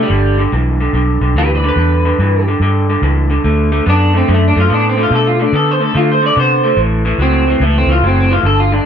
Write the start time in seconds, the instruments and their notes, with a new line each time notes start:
0.03 clean electric guitar G3
0.10 fingered electric bass G1, clean electric guitar G2 D3
0.38 clean electric guitar G2 D3
0.52 fingered electric bass B1, clean electric guitar G2 E3
0.80 clean electric guitar G2 D3
0.93 fingered electric bass B1, clean electric guitar G2 D3
1.21 fingered electric bass B1, clean electric guitar G2 D3
1.34 fingered electric bass D2, clean electric guitar G2 E3 G4 B4
1.54 clean electric guitar B4 D5
1.64 clean electric guitar G2 D3
1.69 clean electric guitar B4
1.76 fingered electric bass E2, clean electric guitar G2 D3
2.05 clean electric guitar G2 D3
2.18 fingered electric bass G2, clean electric guitar G2 E3
2.48 clean electric guitar G2 D3
2.60 fingered electric bass G2, clean electric guitar G2 D3
2.89 clean electric guitar G2 D3
3.02 fingered electric bass C#2, clean electric guitar G2 E3
3.30 clean electric guitar G2 D3
3.44 fingered electric bass D2, clean electric guitar D3 A3
3.72 clean electric guitar D3 A3
3.86 fingered electric bass F#2, clean electric guitar D3 B3 D4
4.13 clean electric guitar D3 A3 C4
4.28 fingered electric bass F#2, clean electric guitar D3 A3
4.34 clean electric guitar A3
4.48 clean electric guitar D4
4.55 fingered electric bass F#2, clean electric guitar D3 A3
4.60 clean electric guitar F4
4.70 fingered electric bass A2, clean electric guitar D3 B3
4.74 clean electric guitar D4
4.89 clean electric guitar C4
4.97 clean electric guitar D3 A3
5.03 clean electric guitar F4
5.10 fingered electric bass B2, clean electric guitar D3 A3
5.15 clean electric guitar A4
5.27 clean electric guitar F4
5.39 clean electric guitar D3 A3 D4
5.52 fingered electric bass D3, clean electric guitar D3 B3 A4
5.71 clean electric guitar C5
5.80 clean electric guitar D3 A3 A4
5.94 clean electric guitar D3 A3 F4, fingered electric bass D3
6.12 clean electric guitar C5
6.22 clean electric guitar D3 A3
6.26 clean electric guitar D5
6.36 fingered electric bass C3, clean electric guitar D3 B3 C5
6.64 clean electric guitar D3 A3
6.76 fingered electric bass A1, clean electric guitar A2 E3
7.05 clean electric guitar A2 E3
7.18 fingered electric bass C#2, clean electric guitar A2 F#3 C4
7.47 clean electric guitar A2 E3 C4
7.60 fingered electric bass C#2, clean electric guitar A2 E3 A3
7.78 clean electric guitar C4
7.87 fingered electric bass C#2, clean electric guitar A2 E3
7.92 clean electric guitar F4
8.01 fingered electric bass F#1, clean electric guitar A2 F#3
8.07 clean electric guitar C4
8.20 clean electric guitar C4
8.31 clean electric guitar A2 E3 F4
8.43 fingered electric bass G1, clean electric guitar G2 D3 A4
8.60 clean electric guitar F4
8.72 clean electric guitar G2 D3 D4